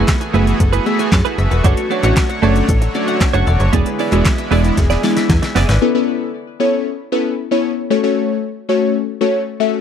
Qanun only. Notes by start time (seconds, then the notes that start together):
Already playing: B4 C#5 E5 G#5
0.21 G#5
0.34 E5
0.60 A4
0.86 E5
0.99 G#5
1.12 A5
1.25 G#5
1.38 E5
1.51 B4
1.64 A4
1.77 C#5
1.91 D5
2.03 F#5
2.30 F#5
2.43 D5
2.69 A4
2.95 D5
3.08 F#5
3.21 A5
3.34 F#5
3.47 D5
3.60 C#5
3.73 G#4
3.86 B4
3.99 D5
4.12 E5
4.38 E5
4.51 D5
4.78 G#4
5.04 D5
5.17 E5
5.30 G#5
5.43 E5
5.56 D5
5.69 B4